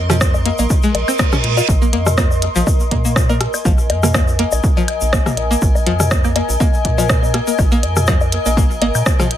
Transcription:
Already playing: analog synth bass F2, ambient pad A#4 D#5 C6
0.10 synth pluck F3, cross-stick, mid tom, shaker
0.21 kick, cross-stick, shaker
0.34 low woodblock, shaker
0.46 synth pluck A#3, closed hi-hat
0.58 analog synth bass A#1, synth pluck A#3, low woodblock, shaker
0.70 kick, reverse cymbal, shaker
0.83 synth pluck G#3, shaker
0.95 analog synth bass A#1, closed hi-hat, low woodblock
1.08 synth pluck C4, high woodblock, shaker
1.19 synth pluck A#3, kick, cross-stick, low woodblock, shaker
1.32 synth pluck C#4, cross-stick, mid tom, shaker
1.44 analog synth bass A#2, closed hi-hat
1.57 synth pluck F4, low woodblock, shaker
1.68 analog synth bass A#1, kick, low woodblock, shaker
1.82 synth pluck A#3, shaker
1.93 analog synth bass F2, synth pluck A#3, closed hi-hat
2.06 cross-stick, mid tom, low woodblock, shaker
2.15 synth pluck A#3, ambient pad G#5, kick, cross-stick, high woodblock, shaker
2.31 low woodblock, shaker
2.42 closed hi-hat
2.56 analog synth bass A#1, synth pluck F3, shaker
2.67 kick, low woodblock, shaker
2.80 shaker
2.91 analog synth bass A#2, synth pluck A#3, kick, closed hi-hat, low woodblock
3.05 synth pluck A#3, shaker
3.16 kick, cross-stick, shaker
3.29 synth pluck A#3, low woodblock, shaker
3.41 cross-stick, closed hi-hat
3.54 high woodblock, low woodblock, shaker
3.65 analog synth bass A#1, synth pluck F3, kick, shaker
3.78 shaker
3.90 analog synth bass F2, closed hi-hat, low woodblock
4.03 synth pluck A#3, cross-stick, mid tom, shaker
4.14 synth pluck A#3, kick, cross-stick, low woodblock, shaker
4.28 shaker
4.39 synth pluck A#3, closed hi-hat
4.52 analog synth bass A#1, low woodblock, shaker
4.64 kick, shaker
4.77 synth pluck F3, low woodblock, shaker
4.88 closed hi-hat, high woodblock
5.01 analog synth bass A#1, shaker
5.13 synth pluck A#3, kick, cross-stick, low woodblock, shaker
5.26 synth pluck A#3, cross-stick, mid tom, shaker
5.37 closed hi-hat, low woodblock
5.51 synth pluck A#3, shaker
5.62 analog synth bass A#1, kick, shaker
5.75 low woodblock, shaker
5.86 analog synth bass F2, synth pluck F3, closed hi-hat
6.00 cross-stick, mid tom, low woodblock, shaker
6.11 kick, cross-stick, shaker
6.24 synth pluck A#3, high woodblock, shaker
6.36 synth pluck A#3, closed hi-hat, low woodblock
6.49 analog synth bass A#1, shaker
6.60 synth pluck A#3, kick, low woodblock, shaker
6.74 shaker
6.85 analog synth bass A#2, kick, closed hi-hat
6.98 synth pluck F3, low woodblock, shaker
7.09 kick, cross-stick, shaker
7.23 low woodblock, shaker
7.34 synth pluck A#3, cross-stick, closed hi-hat
7.47 synth pluck A#3, shaker
7.58 analog synth bass A#1, kick, high woodblock, low woodblock, shaker
7.72 synth pluck A#3, shaker
7.83 analog synth bass F2, closed hi-hat, low woodblock
7.96 cross-stick, mid tom, shaker
8.07 synth pluck F3, kick, cross-stick, shaker
8.21 low woodblock, shaker
8.32 closed hi-hat
8.46 analog synth bass A#1, synth pluck A#3, low woodblock, shaker
8.57 synth pluck A#3, kick, shaker
8.71 shaker
8.82 analog synth bass G#1, synth pluck A#3, closed hi-hat, low woodblock
8.95 analog synth bass A#2, high woodblock, shaker
9.06 kick, cross-stick, low woodblock, shaker
9.20 synth pluck F3, cross-stick, mid tom, shaker
9.31 closed hi-hat

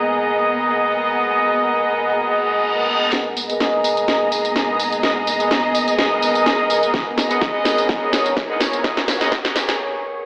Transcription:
Already playing: ambient pad B3 G#4 A#4 F#5, horn section B3 G#4 A#4 D#5, string section B3 G#4 D#5 A#5
2.18 reverse cymbal
3.13 string section B3, ambient pad B3 G#4 A#4 D#5, horn section B3 G#4 A#4 D#5, snare, closed hi-hat, tambourine, riser
3.37 string section A#5, open hi-hat, tambourine
3.50 horn section B3 G#4 A#4 D#5, closed hi-hat, tambourine
3.60 string section G#4, snare, closed hi-hat, tambourine
3.84 open hi-hat, tambourine
3.97 closed hi-hat, tambourine
4.08 snare, closed hi-hat, tambourine
4.12 string section D#5
4.32 horn section B3 G#4 A#4 D#5, open hi-hat, tambourine
4.45 closed hi-hat, tambourine
4.56 snare, closed hi-hat, tambourine
4.69 horn section B3 G#4 A#4 D#5
4.80 open hi-hat, tambourine
4.92 closed hi-hat, tambourine
5.03 horn section B3 G#4 A#4 D#5, snare, closed hi-hat, tambourine
5.27 open hi-hat, tambourine
5.40 horn section B3 G#4 A#4 D#5, closed hi-hat, tambourine
5.51 snare, closed hi-hat, tambourine
5.75 open hi-hat, tambourine
5.88 closed hi-hat, tambourine
5.99 snare, closed hi-hat, tambourine
6.11 horn section B3 G#4 A#4 D#5
6.22 open hi-hat, tambourine
6.35 closed hi-hat, tambourine
6.46 snare, closed hi-hat, tambourine
6.70 open hi-hat, tambourine
6.83 closed hi-hat, tambourine
6.94 horn section B3 G#4 A#4 D#5, ambient pad C#5, kick, snare, closed hi-hat, tambourine
7.18 snare, open hi-hat, tambourine
7.31 horn section B3 G#4 A#4 D#5, closed hi-hat, tambourine
7.41 kick, snare, closed hi-hat, tambourine
7.65 snare, open hi-hat, tambourine
7.78 closed hi-hat, tambourine
7.88 string section C#5, kick, snare, closed hi-hat, tambourine
8.13 horn section B3 G#4 A#4 D#5, snare, open hi-hat, tambourine
8.26 closed hi-hat, tambourine
8.37 kick, snare, closed hi-hat, tambourine
8.50 horn section B3 G#4 A#4 D#5
8.60 snare, open hi-hat, tambourine
8.73 closed hi-hat, tambourine
8.84 horn section B3 G#4 A#4 D#5, kick, snare, closed hi-hat, tambourine
8.97 snare
9.08 snare, open hi-hat, tambourine
9.21 horn section B3 G#4 A#4 D#5, snare, closed hi-hat, tambourine
9.32 kick, snare, closed hi-hat
9.45 snare
9.56 snare, open hi-hat, tambourine
9.69 snare, closed hi-hat, tambourine

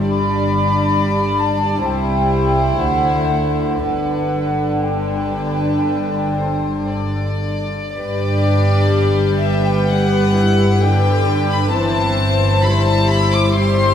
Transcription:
Already playing: double bass section G1, cello section G2, viola section G3
0.08 violin section D4 D5, flute section B5
1.38 flute section A5
1.85 double bass section C2, cello section C2, viola section G3, violin section E4 C5, flute section G5
2.80 cello section D2, double bass section D2, viola section D3, flute section F#5
3.80 double bass section G1, cello section G2, violin section D4 B4, flute section F#5
4.82 violin section B4, flute section G5
6.35 violin section C5
6.88 violin section D5
7.96 double bass section G1, cello section G2, viola section G3 D4, violin section G4 B4 D5
8.94 violin section B4
9.41 violin section E5
9.66 violin section G5
9.89 viola section B3, violin section F#5
10.35 viola section E4
10.80 viola section D3 D4, violin section G4 B4 G5
11.51 violin section B5
11.73 double bass section G1, cello section G2, viola section E3 C4, violin section E4 C5 A5
12.64 viola section G3 E4, violin section E4 B5
12.87 violin section A5
13.10 violin section B5
13.34 violin section D6
13.56 viola section G3, violin section G4 C5 C6

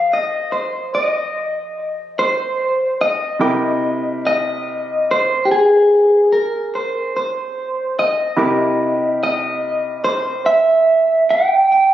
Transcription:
Already playing: upright piano F3 D#4 G4 A4 D6
0.13 clean electric guitar D#5
0.52 clean electric guitar C5
0.95 clean electric guitar D#5
2.19 clean electric guitar C5
3.01 clean electric guitar D#5
3.39 upright piano C3 E4 A#4 G5 D6
4.27 clean electric guitar D#5
5.11 clean electric guitar C5
5.45 clean electric guitar G4
5.51 clean electric guitar G#4
6.33 clean electric guitar A#4
6.75 clean electric guitar C5
7.17 clean electric guitar C5
7.99 clean electric guitar D#5
8.37 upright piano C3 E4 G4 A#4 D6
9.23 clean electric guitar D#5
10.04 clean electric guitar C5
10.46 clean electric guitar E5
11.30 clean electric guitar G5
11.72 clean electric guitar G5

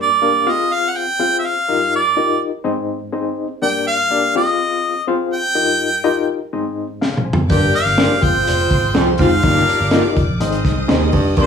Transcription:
Already playing: reed electric piano G2
0.02 harmonica D5
0.22 reed electric piano A#3 D4 G4 A#4 F5
0.47 reed electric piano C4 F4 G4 C5 F5, harmonica D#5
0.73 harmonica F5
0.89 harmonica F#5
0.97 harmonica G5
1.19 reed electric piano C4 F4 G#4 C5 F5
1.39 harmonica E5
1.46 harmonica F5
1.68 reed electric piano G2 D#4 F4 G4 A#4 D#5
1.96 harmonica D5
2.17 reed electric piano D#4 F4 G4 A#4 D#5
2.64 reed electric piano G#2 C4 D#4 G#4 C5 D#5
3.13 reed electric piano C4 D#4 G#4 C5 D#5
3.62 reed electric piano G2 A#3 D4 G4 A#4 D5, harmonica G5
3.87 harmonica F5
4.10 reed electric piano A#3 D4 G4 A#4 D5
4.35 reed electric piano C4 F4 G4 C5 F5, harmonica D#5
5.07 reed electric piano C4 F4 G#4 C5 F5
5.33 harmonica G5
5.55 reed electric piano G2 D#4 F4 G4 A#4 D#5
6.04 reed electric piano D#4 F4 G4 A#4 D#5
6.53 reed electric piano G#2 C4 D#4 G#4 C5 D#5
7.02 reed electric piano G#4 F5, snare
7.17 mid tom
7.25 reed electric piano C5 G#5
7.33 floor tom
7.50 fingered electric bass G1, baritone saxophone G2, reed electric piano G2 A#3 D4 G4 A#4 D5, horn section A#3 D4 G4 A#4, violin section D5 D6, harmonica G5, glockenspiel G6, kick, closed hi-hat
7.74 harmonica F5, glockenspiel F6, closed hi-hat
7.86 fingered electric bass G1, closed hi-hat
7.98 reed electric piano A#3 D4 G4 A#4 C5, clean electric guitar D4 G4 A#4 D5, snare, closed hi-hat
8.21 fingered electric bass F1, reed electric piano C4 F4 G#4 C5 F5, horn section C4 F4 G#4 C5, violin section C5 C6, harmonica G5, glockenspiel G6, kick, closed hi-hat
8.35 fingered electric bass G#1
8.47 fingered electric bass F1, closed hi-hat
8.58 closed hi-hat
8.71 fingered electric bass G#1, kick, closed hi-hat
8.94 fingered electric bass C2, baritone saxophone F2, reed electric piano C4 F4 G#4 C5 G5, clean electric guitar C4 F4 G#4 C5, snare, closed hi-hat
9.18 fingered electric bass F1, baritone saxophone G#2, clean electric guitar C4 F4 G#4 C5, harmonica F5, glockenspiel F6, kick, closed hi-hat
9.43 fingered electric bass G1, baritone saxophone D#2, reed electric piano G2 D#4 F4 G4 A#4 F5, horn section D4 G4 A#4 D5, violin section D5 D6, kick, closed hi-hat
9.56 snare
9.68 closed hi-hat
9.80 fingered electric bass G1, closed hi-hat
9.91 clean electric guitar A#3 F4 G4 D#5, reed electric piano D#4 F4 G4 A#4 D#5, snare, closed hi-hat
10.16 fingered electric bass F1, kick, closed hi-hat
10.29 fingered electric bass A#1
10.41 fingered electric bass G#1, reed electric piano G#2 C4 D#4 G#4 C5 D#5, horn section C4 D#4 G#4 C5, violin section D#5 D#6, closed hi-hat
10.52 closed hi-hat
10.65 fingered electric bass C2, kick, snare, closed hi-hat
10.88 baritone saxophone D#2, fingered electric bass D#2, reed electric piano C4 D#4 G#4 C5 D#5, clean electric guitar D#4 G#4 C5 D#5, snare, closed hi-hat
11.12 fingered electric bass F1, baritone saxophone G2, kick, open hi-hat
11.37 fingered electric bass G1, baritone saxophone G2, reed electric piano G2 A#3 D4 G4 A#4 D5, horn section A#3 D4 G4 A#4, violin section G5 G6, glockenspiel C6, kick, closed hi-hat
11.42 harmonica C5

